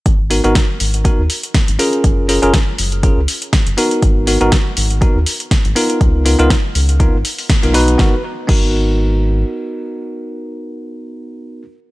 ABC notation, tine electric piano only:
X:1
M:4/4
L:1/16
Q:"Swing 16ths" 1/4=121
K:G#dor
V:1 name="Tine electric piano"
z2 [B,DFA] [B,DFA] z4 [B,DFA] z4 z [CEGA]2- | [CEGA]2 [CEGA] [CEGA] z4 [CEGA] z4 z [B,DFA]2- | [B,DFA]2 [B,DFA] [B,DFA] z4 [B,DFA] z4 z [B,DEA]2- | [B,DEA]2 [B,DEA] [B,DEA] z4 [B,DEA] z4 [B,DEA] [B,DFB]2 |
[B,DFA] z3 [B,DFA]12- | [B,DFA]16 |]